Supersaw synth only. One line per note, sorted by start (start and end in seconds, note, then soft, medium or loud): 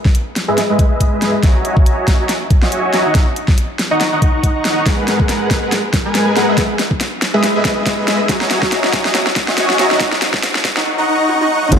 0.48 0.58 G#3 medium
0.48 0.58 G#4 medium
0.48 0.58 B4 medium
0.48 0.58 D#5 medium
0.48 0.58 E5 loud
0.70 0.77 G#3 medium
0.70 0.77 G#4 medium
0.70 0.77 B4 medium
0.70 0.77 D#5 medium
0.70 0.77 E5 medium
0.79 0.98 G#3 medium
0.79 0.98 G#4 medium
0.79 0.98 B4 medium
0.79 0.98 D#5 medium
0.79 0.98 E5 medium
1.01 1.10 G#3 medium
1.01 1.10 G#4 medium
1.01 1.10 B4 medium
1.01 1.10 D#5 medium
1.01 1.10 E5 loud
1.12 1.20 G#3 medium
1.12 1.20 G#4 medium
1.12 1.20 B4 medium
1.12 1.20 D#5 medium
1.12 1.20 E5 loud
1.22 1.34 G#3 medium
1.22 1.34 G#4 medium
1.22 1.34 B4 medium
1.22 1.34 D#5 medium
1.22 1.34 E5 medium
1.43 2.17 F#4 medium
1.43 2.17 C#5 medium
1.43 2.17 D#5 medium
1.43 2.17 E5 medium
1.43 2.17 G#5 medium
1.43 2.17 A#5 medium
2.19 2.30 F#4 medium
2.19 2.30 C#5 medium
2.19 2.30 D#5 medium
2.19 2.30 E5 medium
2.19 2.30 G#5 medium
2.19 2.30 A#5 loud
2.62 2.91 F#4 medium
2.62 2.91 C#5 medium
2.62 2.91 D#5 medium
2.62 2.91 E5 medium
2.62 2.91 G#5 medium
2.62 2.91 C#6 medium
2.93 3.04 F#4 medium
2.93 3.04 C#5 medium
2.93 3.04 D#5 medium
2.93 3.04 E5 medium
2.93 3.04 G#5 medium
2.93 3.04 A#5 loud
3.05 3.23 D#4 medium
3.05 3.23 D#5 medium
3.05 3.23 F#5 medium
3.05 3.23 A#5 medium
3.05 3.23 C#6 medium
3.91 4.01 D#4 medium
3.91 4.01 D#5 medium
3.91 4.01 F#5 medium
3.91 4.01 A#5 medium
3.91 4.01 C#6 loud
4.12 4.20 D#4 medium
4.12 4.20 D#5 medium
4.12 4.20 F#5 medium
4.12 4.20 A#5 medium
4.12 4.20 C#6 medium
4.22 4.53 D#4 medium
4.22 4.53 D#5 medium
4.22 4.53 F#5 medium
4.22 4.53 A#5 medium
4.22 4.53 C#6 medium
4.55 4.84 D#4 medium
4.55 4.84 D#5 medium
4.55 4.84 F#5 medium
4.55 4.84 A#5 medium
4.55 4.84 C#6 medium
4.86 5.60 G#3 medium
4.86 5.60 G#4 medium
4.86 5.60 A#4 medium
4.86 5.60 B4 medium
4.86 5.60 F#5 medium
5.62 5.73 G#3 loud
5.62 5.73 G#4 medium
5.62 5.73 A#4 medium
5.62 5.73 B4 medium
5.62 5.73 F#5 loud
6.05 6.34 G#3 medium
6.05 6.34 G#4 medium
6.05 6.34 A#4 medium
6.05 6.34 B4 medium
6.05 6.34 G#5 medium
6.36 6.46 G#3 loud
6.36 6.46 G#4 medium
6.36 6.46 A#4 medium
6.36 6.46 B4 medium
6.36 6.46 F#5 loud
6.48 6.66 G#3 medium
6.48 6.66 G#4 medium
6.48 6.66 B4 medium
6.48 6.66 D#5 medium
6.48 6.66 E5 medium
7.34 7.44 G#3 medium
7.34 7.44 G#4 medium
7.34 7.44 B4 medium
7.34 7.44 D#5 medium
7.34 7.44 E5 loud
7.55 7.63 G#3 medium
7.55 7.63 G#4 medium
7.55 7.63 B4 medium
7.55 7.63 D#5 medium
7.55 7.63 E5 medium
7.65 7.84 G#3 medium
7.65 7.84 G#4 medium
7.65 7.84 B4 medium
7.65 7.84 D#5 medium
7.65 7.84 E5 medium
7.86 7.95 G#3 medium
7.86 7.95 G#4 medium
7.86 7.95 B4 medium
7.86 7.95 D#5 medium
7.86 7.95 E5 loud
7.98 8.05 G#3 loud
7.98 8.05 G#4 medium
7.98 8.05 B4 medium
7.98 8.05 D#5 medium
7.98 8.05 E5 loud
8.08 8.20 G#3 medium
8.08 8.20 G#4 medium
8.08 8.20 B4 medium
8.08 8.20 D#5 medium
8.08 8.20 E5 medium
8.29 9.02 F#4 medium
8.29 9.03 C#5 medium
8.29 9.02 D#5 medium
8.29 9.03 E5 medium
8.29 9.02 G#5 medium
8.29 9.02 A#5 loud
9.05 9.15 F#4 loud
9.05 9.15 C#5 medium
9.05 9.15 D#5 medium
9.05 9.15 E5 medium
9.05 9.15 G#5 medium
9.05 9.15 A#5 loud
9.48 9.77 F#4 medium
9.48 9.77 C#5 medium
9.48 9.77 D#5 medium
9.48 9.77 E5 medium
9.48 9.77 G#5 medium
9.48 9.77 C#6 medium
9.79 9.89 F#4 loud
9.79 9.89 C#5 medium
9.79 9.89 D#5 loud
9.79 9.89 E5 medium
9.79 9.89 G#5 medium
9.79 9.89 A#5 loud
9.91 10.09 D#4 medium
9.91 10.09 D#5 medium
9.91 10.09 F#5 medium
9.91 10.09 A#5 medium
9.91 10.09 C#6 medium
10.77 10.87 D#4 medium
10.77 10.87 D#5 medium
10.77 10.87 F#5 medium
10.77 10.87 A#5 medium
10.77 10.87 C#6 loud
10.98 11.05 D#4 medium
10.98 11.05 D#5 medium
10.98 11.05 F#5 medium
10.98 11.05 A#5 medium
10.98 11.05 C#6 medium
11.08 11.38 D#4 medium
11.08 11.38 D#5 medium
11.08 11.38 F#5 medium
11.08 11.38 A#5 medium
11.08 11.38 C#6 medium
11.41 11.70 D#4 medium
11.41 11.70 D#5 medium
11.41 11.70 F#5 medium
11.41 11.70 A#5 medium
11.41 11.70 C#6 loud
11.72 11.79 G#3 medium
11.72 11.79 G#4 medium
11.72 11.79 A#4 medium
11.72 11.79 B4 medium
11.72 11.79 F#5 medium